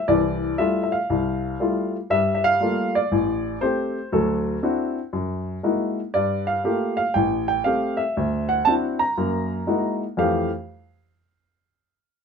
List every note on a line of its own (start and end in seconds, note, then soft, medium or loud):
0.08 0.52 C2 medium
0.08 0.52 E3 medium
0.08 0.60 D5 medium
0.58 0.94 G3 soft
0.58 0.94 A3 soft
0.58 0.94 E4 soft
0.58 0.94 F4 medium
0.58 0.81 E5 medium
0.83 0.93 E5 medium
0.92 1.89 F5 medium
1.10 1.53 C2 medium
1.60 1.95 G3 soft
1.60 1.95 A3 soft
1.60 1.96 E4 soft
1.60 1.96 F4 medium
2.10 2.54 G2 medium
2.10 2.54 G3 medium
2.10 2.33 E5 medium
2.35 2.44 E5 medium
2.44 2.96 F5 loud
2.60 2.96 G3 soft
2.60 2.96 A3 soft
2.60 2.96 A#3 soft
2.60 2.96 F4 medium
2.95 3.64 D5 medium
3.12 3.55 A1 medium
3.61 3.97 A3 soft
3.61 3.97 C4 soft
3.61 3.98 G4 medium
3.61 4.08 C5 medium
4.12 4.56 D2 medium
4.12 4.56 F#3 medium
4.12 4.93 A4 medium
4.63 4.98 C4 soft
4.63 4.98 D4 soft
4.63 4.98 E4 soft
4.63 4.98 F#4 medium
5.13 5.57 F#2 medium
5.63 5.99 G#3 soft
5.63 5.99 A#3 soft
5.63 5.99 D#4 soft
5.63 5.99 E4 soft
5.63 5.99 F#4 medium
6.14 6.58 G2 medium
6.14 6.45 D5 medium
6.47 6.95 F5 medium
6.64 7.00 A3 soft
6.64 7.00 A#3 soft
6.64 7.00 F4 soft
6.64 7.00 G4 medium
6.97 7.15 F5 medium
7.14 7.59 A1 medium
7.14 7.47 G5 medium
7.48 7.64 G5 medium
7.64 8.01 A3 soft
7.64 8.01 C4 soft
7.64 8.01 G4 medium
7.64 8.00 F5 medium
7.97 8.50 E5 medium
8.17 8.60 D2 medium
8.49 8.64 F#5 medium
8.65 9.02 C4 soft
8.65 9.02 D4 soft
8.65 9.02 E4 soft
8.65 9.03 F#4 medium
8.65 8.73 A5 medium
8.99 9.97 A#5 medium
9.18 9.61 F#2 medium
9.18 9.61 A#3 medium
9.67 10.03 G#3 soft
9.67 10.03 A#3 soft
9.67 10.03 D#4 soft
9.67 10.03 E4 soft
9.67 10.03 F#4 medium
10.17 10.48 F2 medium
10.17 10.48 E3 medium
10.17 10.48 A3 medium
10.17 10.48 G4 medium
10.17 10.50 F5 medium